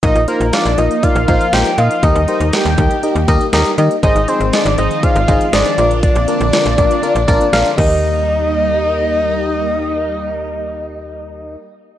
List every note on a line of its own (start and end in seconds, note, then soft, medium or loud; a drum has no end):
0.03 0.14 A#1 loud
0.03 2.01 F3 medium
0.03 2.01 A#3 medium
0.03 3.99 D#4 medium
0.03 0.21 D#4 medium
0.03 0.21 F4 medium
0.03 0.21 A#4 medium
0.03 0.21 D#5 loud
0.03 0.26 D#5 loud
0.03 kick loud
0.03 closed hi-hat medium
0.15 0.26 A#1 loud
0.15 closed hi-hat medium
0.28 0.46 D#4 medium
0.28 0.46 F4 medium
0.28 0.46 A#4 medium
0.28 0.54 A#4 medium
0.28 0.46 C5 medium
0.28 closed hi-hat medium
0.41 0.51 A#1 loud
0.41 closed hi-hat medium
0.53 0.71 D#4 medium
0.53 0.71 F4 medium
0.53 0.71 A#4 medium
0.53 0.80 D5 medium
0.53 0.71 F5 medium
0.53 snare loud
0.53 closed hi-hat medium
0.66 0.77 A#1 medium
0.66 closed hi-hat medium
0.78 0.89 A#1 medium
0.78 0.96 D#4 medium
0.78 0.96 F4 medium
0.78 0.96 A#4 medium
0.78 0.96 D#5 medium
0.78 1.05 D#5 medium
0.78 closed hi-hat medium
0.91 closed hi-hat medium
1.03 1.21 D#4 medium
1.03 1.21 F4 medium
1.03 1.21 A#4 medium
1.03 1.21 D5 medium
1.03 1.27 F5 loud
1.03 kick medium
1.03 closed hi-hat medium
1.16 1.26 A#1 loud
1.16 closed hi-hat medium
1.28 1.39 A#1 loud
1.28 1.46 D#4 medium
1.28 1.46 F4 medium
1.28 1.46 A#4 medium
1.28 1.46 C5 loud
1.28 1.55 F5 loud
1.28 kick medium
1.28 closed hi-hat medium
1.41 closed hi-hat soft
1.53 1.64 A#1 loud
1.53 1.71 D#4 loud
1.53 1.71 F4 medium
1.53 1.71 A#4 medium
1.53 1.71 C5 loud
1.53 1.80 G5 loud
1.53 snare loud
1.53 closed hi-hat medium
1.66 closed hi-hat medium
1.78 1.89 A#2 loud
1.78 1.96 D#4 medium
1.78 1.96 F4 medium
1.78 1.96 A#4 medium
1.78 1.96 D#5 medium
1.78 2.05 F5 loud
1.78 closed hi-hat medium
1.91 closed hi-hat medium
2.03 2.14 D#2 loud
2.03 4.01 G3 medium
2.03 4.01 A#3 medium
2.03 2.21 D#4 loud
2.03 2.21 G4 medium
2.03 2.21 A#4 medium
2.03 2.21 D#5 loud
2.03 2.55 D#5 loud
2.03 kick loud
2.03 closed hi-hat medium
2.15 2.26 D#2 loud
2.15 closed hi-hat soft
2.28 2.46 D#4 medium
2.28 2.46 G4 medium
2.28 2.46 A#4 medium
2.28 2.46 C5 medium
2.28 closed hi-hat medium
2.40 2.51 D#2 medium
2.40 closed hi-hat medium
2.53 2.71 D#4 medium
2.53 2.71 G4 medium
2.53 2.71 A#4 medium
2.53 2.71 D#5 medium
2.53 3.28 G5 loud
2.53 snare loud
2.53 closed hi-hat medium
2.65 2.76 D#2 loud
2.65 closed hi-hat medium
2.78 2.89 D#2 loud
2.78 2.96 D#4 medium
2.78 2.96 G4 medium
2.78 2.96 A#4 medium
2.78 2.96 D#5 medium
2.78 kick loud
2.78 closed hi-hat medium
2.91 closed hi-hat soft
3.03 3.21 D#4 medium
3.03 3.21 G4 medium
3.03 3.21 A#4 medium
3.03 3.21 D#5 medium
3.03 closed hi-hat medium
3.15 3.26 D#2 loud
3.15 closed hi-hat soft
3.28 3.39 D#2 loud
3.28 3.46 D#4 loud
3.28 3.46 G4 loud
3.28 3.46 A#4 loud
3.28 3.46 D#5 loud
3.28 kick loud
3.28 closed hi-hat medium
3.41 closed hi-hat soft
3.53 3.64 D#2 loud
3.53 3.71 D#4 loud
3.53 3.71 G4 loud
3.53 3.71 A#4 loud
3.53 3.71 D#5 loud
3.53 snare loud
3.53 closed hi-hat medium
3.66 closed hi-hat medium
3.78 3.89 D#3 loud
3.78 3.96 D#4 medium
3.78 3.96 G4 medium
3.78 3.96 A#4 medium
3.78 3.96 D#5 loud
3.78 closed hi-hat medium
3.91 closed hi-hat medium
4.03 4.14 G#1 loud
4.03 5.76 D#3 medium
4.03 7.74 F3 medium
4.03 5.76 G#3 medium
4.03 7.74 C4 medium
4.03 4.21 D#4 loud
4.03 7.74 F4 medium
4.03 4.21 G#4 medium
4.03 4.21 C5 medium
4.03 4.30 D#5 loud
4.03 4.21 D#5 loud
4.03 kick loud
4.03 closed hi-hat medium
4.16 4.26 G#1 medium
4.16 closed hi-hat medium
4.28 4.46 D#4 medium
4.28 4.46 G#4 medium
4.28 4.55 C5 medium
4.28 4.46 C5 medium
4.28 4.46 D#5 medium
4.28 closed hi-hat medium
4.40 4.51 G#1 medium
4.40 closed hi-hat medium
4.53 4.71 D#4 medium
4.53 4.71 G#4 medium
4.53 4.71 C5 medium
4.53 4.78 D5 loud
4.53 4.71 D#5 medium
4.53 snare loud
4.53 closed hi-hat medium
4.66 4.76 G#1 loud
4.66 closed hi-hat medium
4.78 4.89 G#1 loud
4.78 4.96 D#4 medium
4.78 4.96 G#4 medium
4.78 4.96 C5 medium
4.78 4.96 D#5 medium
4.78 5.05 D#5 loud
4.78 closed hi-hat medium
4.91 closed hi-hat medium
5.03 5.21 D#4 medium
5.03 5.21 G#4 medium
5.03 5.21 C5 medium
5.03 5.21 D5 medium
5.03 5.53 F5 loud
5.03 kick loud
5.03 closed hi-hat medium
5.16 5.27 G#1 loud
5.16 closed hi-hat medium
5.28 5.39 G#1 loud
5.28 5.46 D#4 loud
5.28 5.46 G#4 medium
5.28 5.46 C5 medium
5.28 5.46 D#5 loud
5.28 kick loud
5.28 closed hi-hat medium
5.41 closed hi-hat soft
5.53 5.64 G#1 loud
5.53 5.71 D#4 loud
5.53 5.71 G#4 medium
5.53 5.71 C5 medium
5.53 6.00 D5 loud
5.53 5.71 D#5 loud
5.53 snare loud
5.53 closed hi-hat medium
5.66 closed hi-hat medium
5.78 6.11 A#1 loud
5.78 7.76 D3 medium
5.78 7.76 A#3 medium
5.78 6.18 D4 medium
5.78 6.18 F4 medium
5.78 6.18 A#4 medium
5.78 6.18 D5 medium
5.78 closed hi-hat medium
5.91 closed hi-hat medium
6.03 7.74 D5 loud
6.03 kick loud
6.03 closed hi-hat medium
6.16 6.27 A#1 loud
6.16 closed hi-hat medium
6.28 6.46 D4 medium
6.28 6.46 F4 medium
6.28 6.46 A#4 medium
6.28 6.46 D5 medium
6.28 closed hi-hat medium
6.41 6.52 A#1 loud
6.41 closed hi-hat medium
6.53 6.71 D4 medium
6.53 6.71 F4 medium
6.53 6.71 A#4 medium
6.53 6.71 D5 medium
6.53 snare loud
6.53 closed hi-hat medium
6.66 6.77 A#1 loud
6.66 closed hi-hat medium
6.78 6.89 A#1 loud
6.78 6.96 D4 medium
6.78 6.96 F4 medium
6.78 6.96 A#4 medium
6.78 6.96 D5 loud
6.78 kick loud
6.78 closed hi-hat medium
6.91 closed hi-hat soft
7.03 7.21 D4 medium
7.03 7.21 F4 medium
7.03 7.21 A#4 medium
7.03 7.21 D5 loud
7.03 closed hi-hat medium
7.15 7.26 A#1 loud
7.15 closed hi-hat soft
7.28 7.39 A#1 loud
7.28 7.46 D4 loud
7.28 7.46 F4 loud
7.28 7.46 A#4 loud
7.28 7.46 D5 loud
7.28 kick loud
7.28 closed hi-hat medium
7.41 closed hi-hat soft
7.53 7.64 A#1 loud
7.53 7.71 D4 loud
7.53 7.71 F4 loud
7.53 7.71 A#4 loud
7.53 7.71 F5 loud
7.53 snare loud
7.53 closed hi-hat medium
7.66 closed hi-hat medium
7.76 11.57 D#2 loud
7.76 11.57 G3 medium
7.76 11.57 A#3 medium
7.76 11.55 D#4 medium
7.76 11.57 D#4 medium
7.76 11.56 G4 medium
7.76 11.57 A#4 medium
7.76 11.57 D#5 loud
7.76 kick loud
7.76 crash medium
7.80 11.59 D#5 loud